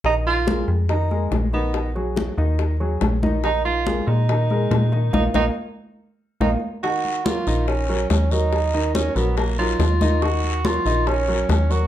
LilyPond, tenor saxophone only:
\new Staff \with { instrumentName = "Tenor saxophone" } { \time 4/4 \key ees \minor \tempo 4 = 142 ees'8 f'4 r8 ees'4 r8 ces'8~ | ces'8 r2. r8 | ees'8 f'4 ees'2~ ees'8 | ees'8 ees'8 r2 ees'8 r8 |
ges'4 f'4 des'4 des'8 ees'8~ | ees'4 des'8 ces'8 bes8 f'4. | ges'4 f'4 des'4 des'8 ges'8 | }